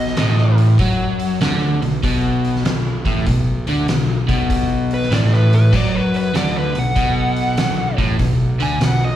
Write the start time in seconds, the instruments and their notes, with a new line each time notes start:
Already playing: picked electric bass B1, overdriven electric guitar B2, lead electric guitar D#5
0.07 snare
0.17 picked electric bass A1, overdriven electric guitar A2, snare, open hi-hat
0.38 snare
0.58 open hi-hat
0.79 picked electric bass F#2, overdriven electric guitar F#3, kick, open hi-hat
1.20 open hi-hat
1.41 picked electric bass D2, overdriven electric guitar D3, snare, open hi-hat
1.82 picked electric bass B1, overdriven electric guitar B2, open hi-hat
2.03 picked electric bass B1, overdriven electric guitar B2, kick, open hi-hat
2.45 open hi-hat
2.56 snare
2.65 picked electric bass B1, overdriven electric guitar B2, snare, open hi-hat
3.05 picked electric bass A1, overdriven electric guitar A2, kick, open hi-hat
3.27 picked electric bass B1, overdriven electric guitar B2, kick, open hi-hat
3.67 picked electric bass D2, overdriven electric guitar D3, open hi-hat
3.87 picked electric bass B1, overdriven electric guitar B2, snare, open hi-hat
4.29 picked electric bass B1, overdriven electric guitar B2, kick, open hi-hat
4.50 kick, open hi-hat
4.91 lead electric guitar B4, open hi-hat
5.02 snare
5.11 picked electric bass A1, overdriven electric guitar A2, lead electric guitar D5, snare, open hi-hat
5.33 lead electric guitar B4, snare
5.53 lead electric guitar B4, open hi-hat
5.72 picked electric bass F#2, overdriven electric guitar F#3, kick, open hi-hat
5.76 lead electric guitar D5
5.97 lead electric guitar B4
6.14 lead electric guitar B4, open hi-hat
6.34 picked electric bass D2, overdriven electric guitar D3, lead electric guitar D5, snare, open hi-hat
6.58 lead electric guitar B4
6.75 picked electric bass B1, overdriven electric guitar B2, open hi-hat
6.79 lead electric guitar F#5
6.96 picked electric bass B1, overdriven electric guitar B2, kick, open hi-hat
7.36 open hi-hat
7.57 picked electric bass B1, overdriven electric guitar B2, snare, open hi-hat
7.98 picked electric bass A1, overdriven electric guitar A2, kick, open hi-hat
8.19 picked electric bass B1, overdriven electric guitar B2, kick, open hi-hat
8.60 picked electric bass D2, overdriven electric guitar D3, lead electric guitar G#5, open hi-hat
8.80 picked electric bass B1, overdriven electric guitar B2, lead electric guitar F#5, snare, open hi-hat
9.04 lead electric guitar D#5